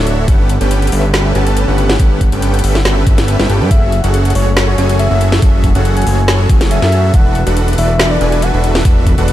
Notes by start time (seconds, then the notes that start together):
Already playing: D1 D3 F#3 D4 E4 F#4 A4 C#5 E5
0.07 closed hi-hat
0.28 G1 C#3 A3 B3 C#4 G4 A4 B4 F#5, kick, closed hi-hat
0.49 closed hi-hat
0.61 G1 C#4 G4 A4 B4 G5, closed hi-hat
0.71 closed hi-hat
0.82 closed hi-hat
0.87 closed hi-hat
0.92 G1 C#4 G4 A4 B4 E5, open hi-hat
1.14 snare, closed hi-hat
1.35 G1 C#4 G4 A4 B4 A5, closed hi-hat
1.47 closed hi-hat
1.57 closed hi-hat
1.68 G1 C#4 G4 A4 B4 F#5
1.78 closed hi-hat
1.89 snare
1.99 G1 C#4 G4 A4 B4 F#5, kick, closed hi-hat
2.21 kick, closed hi-hat
2.32 G1 C#4 G4 A4 B4 G5, closed hi-hat
2.42 closed hi-hat
2.54 closed hi-hat
2.59 closed hi-hat
2.64 G1 C#4 G4 A4 B4 E5, open hi-hat
2.75 snare
2.85 snare, closed hi-hat
3.07 G1 C#4 G4 A4 E5, kick, closed hi-hat
3.18 snare, closed hi-hat
3.28 closed hi-hat
3.39 G1 C#4 G4 A4 B4 E5, snare
3.49 G1 C#4 G4 A4 B4 G5, closed hi-hat
3.61 G2 C#4 G4 A4 B4 G5
3.71 F#1 E3 F#3 A3 C#4 F#4 G#4 A4 E5, kick, closed hi-hat
3.92 closed hi-hat
4.04 F#1 C#4 F#4 G#4 A4 F#5, closed hi-hat
4.14 closed hi-hat
4.25 closed hi-hat
4.30 closed hi-hat
4.35 F#1 C#4 F#4 G#4 A4 C#5, open hi-hat
4.57 snare, closed hi-hat
4.68 C#5
4.78 F#1 C#4 F#4 G#4 A4 G#5, closed hi-hat
4.89 closed hi-hat
4.99 E5, closed hi-hat
5.11 F#1 C#4 F#4 G#4 A4 E5
5.21 closed hi-hat
5.32 snare
5.42 F#1 C#4 F#4 G#4 A4 E5, kick, closed hi-hat
5.64 kick, closed hi-hat
5.75 F#1 C#4 F#4 G#4 A4 F#5, closed hi-hat
5.85 closed hi-hat
5.97 G#5, closed hi-hat
6.02 closed hi-hat
6.07 F#1 C#4 F#4 G#4 A4 C#5, open hi-hat
6.28 snare, closed hi-hat
6.49 F#1 C#4 F#4 G#4 A4 G#5, kick, closed hi-hat
6.61 snare, closed hi-hat
6.71 E5, closed hi-hat
6.82 F#2 C#4 F#4 G#4 A4 E5, snare
6.92 closed hi-hat
7.14 E1 D3 F#3 D4 E4 F#4 A4 B4 F#5, kick, closed hi-hat
7.35 closed hi-hat
7.47 E1 D4 F#4 A4 B4 F#5, closed hi-hat
7.57 closed hi-hat
7.68 closed hi-hat
7.73 closed hi-hat
7.78 E1 D4 F#4 A4 B4 D5 E5, open hi-hat
8.00 snare, closed hi-hat
8.11 D5
8.21 E1 D4 F#4 A4 B4 G#5, closed hi-hat
8.32 closed hi-hat
8.42 F#5, closed hi-hat
8.54 E1 D4 F#4 A4 B4 E5
8.64 closed hi-hat
8.75 snare
8.85 E1 F#4, kick, closed hi-hat
9.07 kick, closed hi-hat
9.18 E1 D4 F#4 A4 B4 F#5, closed hi-hat
9.28 closed hi-hat